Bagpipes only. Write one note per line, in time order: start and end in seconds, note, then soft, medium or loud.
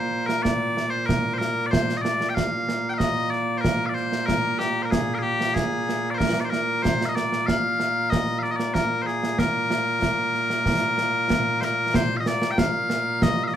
0.00 13.56 A#2 medium
0.00 13.56 A#3 medium
0.00 0.26 C5 medium
0.26 0.43 A#4 medium
0.43 0.90 D5 loud
0.90 1.06 C5 medium
1.06 1.34 A#4 medium
1.34 1.38 C5 medium
1.38 1.66 A#4 medium
1.66 1.71 D5 medium
1.71 1.97 C5 medium
1.97 2.02 D#5 medium
2.02 2.29 D5 loud
2.29 2.35 G5 medium
2.35 2.90 F5 loud
2.90 2.94 G5 medium
2.94 3.30 D#5 medium
2.94 2.98 F5 medium
3.30 3.58 D5 medium
3.58 3.86 A#4 medium
3.58 3.61 C5 medium
3.86 3.94 D5 medium
3.86 3.89 F5 medium
3.94 4.26 C5 medium
4.26 4.59 A#4 loud
4.59 4.82 G4 medium
4.82 4.91 A#4 medium
4.82 4.85 C5 medium
4.91 5.14 G#4 medium
5.14 5.22 G#4 medium
5.14 5.18 A#4 medium
5.22 5.54 G4 medium
5.54 6.10 G#4 loud
6.10 6.18 C5 medium
6.10 6.14 D5 medium
6.18 6.40 A#4 medium
6.40 6.45 D5 medium
6.45 6.50 C5 medium
6.50 6.83 A#4 medium
6.83 7.05 C5 medium
7.05 7.16 D#5 medium
7.05 7.09 F5 medium
7.16 7.46 D5 medium
7.46 8.10 F5 loud
8.10 8.39 D#5 loud
8.39 8.43 F5 medium
8.43 8.51 D5 medium
8.51 8.56 D#5 medium
8.56 8.74 D5 medium
8.74 9.02 A#4 medium
9.02 9.39 G#4 medium
9.02 9.06 C5 medium
9.39 11.61 A#4 medium
11.61 11.96 A#4 medium
11.61 11.64 C5 medium
11.96 12.17 C5 loud
12.17 12.28 D#5 medium
12.17 12.20 F5 medium
12.28 12.51 D5 loud
12.51 12.59 G5 medium
12.59 13.23 F5 loud
13.23 13.44 D#5 loud
13.44 13.54 D#5 medium
13.44 13.47 F5 medium